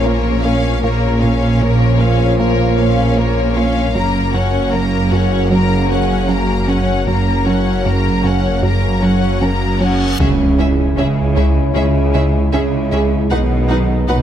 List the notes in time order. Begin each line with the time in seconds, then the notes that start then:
Already playing: A#1 A#2 F3 A#3 C#4 F4 A#4
0.04 A#3 F4 A#4 C#5
0.43 A#3 C#4 F4 C#5 F5
0.82 A#1 A#2 F3 A#3 C#4 F4 A#4 C#5
1.20 A#2 C#4 A#4 C#5 F5
1.60 A#2 A#3 C#4 A#4 C#5
1.99 A#2 C#4 A#4 C#5 F5
2.37 A#2 A#3 A#4 C#5
2.77 A#3 C#4 C#5 F5
3.16 A#3 F4 A#4 C#5
3.55 A#3 C#4 F4 C#5 F5
3.94 F#1 F#2 C#3 F#3 A#3 C#4 F#4 A#4 A#5
4.34 F#2 C#4 F#4 C#5 F#5
4.72 F#2 A#3 A#4 A#5
5.12 F#2 C#4 F#4 C#5 F#5
5.51 F#2 F#3 A#3 A#4 A#5
5.90 F#3 C#4 C#5 F#5
6.29 F#3 A#3 C#4 A#4 A#5
6.67 F#3 C#4 C#5 F#5
7.06 F#1 F#2 C#3 F#3 A#3 C#4 F#4 A#4 A#5, reverse cymbal
7.45 F#2 C#4 F#4 C#5 F#5
7.85 F#2 A#3 A#4 A#5
8.23 F#2 C#4 F#4 C#5 F#5
8.63 F#2 F#3 A#3 A#4 A#5
9.02 F#3 C#4 C#5 F#5
9.41 F#3 A#3 C#4 A#4 A#5
9.80 F#3 C#4 C#5 F#5
10.19 C#2 C#3 G#3 C#4 E4 G#4 C#5 E5, impact
10.58 C#2 E3 C#4 G#4 E5
10.97 C#2 C#3 C#4 G#4 E5
11.36 C#2 C#3 C#4 G#4 E5
11.74 C#2 C#3 G#3 C#4 G#4 E5
12.14 C#3 G#3 C#4 G#4 E5
12.53 C#2 C#3 C#4 G#4 E5
12.92 C#2 C#4 G#4 E5
13.30 B1 B2 D#3 F#3 B3 D#4 B4 D#5 F#5
13.69 B2 D#4 B4 F#5
14.07 B1 B2 F#3 D#4 B4 F#5